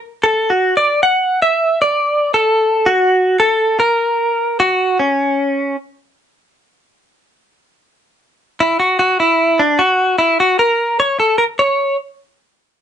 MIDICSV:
0, 0, Header, 1, 2, 480
1, 0, Start_track
1, 0, Tempo, 797872
1, 129, Time_signature, 4, 2, 24, 8
1, 7710, End_track
2, 0, Start_track
2, 0, Title_t, "Clean electric guitar"
2, 0, Program_c, 0, 27
2, 141, Note_on_c, 0, 69, 88
2, 300, Note_off_c, 0, 69, 0
2, 301, Note_on_c, 0, 66, 82
2, 444, Note_off_c, 0, 66, 0
2, 463, Note_on_c, 0, 74, 88
2, 605, Note_off_c, 0, 74, 0
2, 619, Note_on_c, 0, 78, 105
2, 854, Note_off_c, 0, 78, 0
2, 856, Note_on_c, 0, 76, 96
2, 1076, Note_off_c, 0, 76, 0
2, 1093, Note_on_c, 0, 74, 88
2, 1406, Note_off_c, 0, 74, 0
2, 1408, Note_on_c, 0, 69, 79
2, 1722, Note_on_c, 0, 66, 86
2, 1738, Note_off_c, 0, 69, 0
2, 2023, Note_off_c, 0, 66, 0
2, 2044, Note_on_c, 0, 69, 91
2, 2269, Note_off_c, 0, 69, 0
2, 2284, Note_on_c, 0, 70, 88
2, 2764, Note_off_c, 0, 70, 0
2, 2766, Note_on_c, 0, 66, 80
2, 2990, Note_off_c, 0, 66, 0
2, 3005, Note_on_c, 0, 61, 65
2, 3462, Note_off_c, 0, 61, 0
2, 5176, Note_on_c, 0, 64, 68
2, 5289, Note_off_c, 0, 64, 0
2, 5292, Note_on_c, 0, 66, 71
2, 5403, Note_off_c, 0, 66, 0
2, 5410, Note_on_c, 0, 66, 83
2, 5521, Note_off_c, 0, 66, 0
2, 5534, Note_on_c, 0, 64, 73
2, 5772, Note_on_c, 0, 62, 72
2, 5779, Note_off_c, 0, 64, 0
2, 5889, Note_on_c, 0, 66, 88
2, 5894, Note_off_c, 0, 62, 0
2, 6112, Note_off_c, 0, 66, 0
2, 6127, Note_on_c, 0, 64, 85
2, 6240, Note_off_c, 0, 64, 0
2, 6257, Note_on_c, 0, 66, 89
2, 6369, Note_off_c, 0, 66, 0
2, 6372, Note_on_c, 0, 70, 93
2, 6613, Note_off_c, 0, 70, 0
2, 6615, Note_on_c, 0, 73, 97
2, 6733, Note_off_c, 0, 73, 0
2, 6735, Note_on_c, 0, 69, 89
2, 6845, Note_off_c, 0, 69, 0
2, 6847, Note_on_c, 0, 70, 93
2, 6880, Note_off_c, 0, 70, 0
2, 6973, Note_on_c, 0, 73, 81
2, 7195, Note_off_c, 0, 73, 0
2, 7710, End_track
0, 0, End_of_file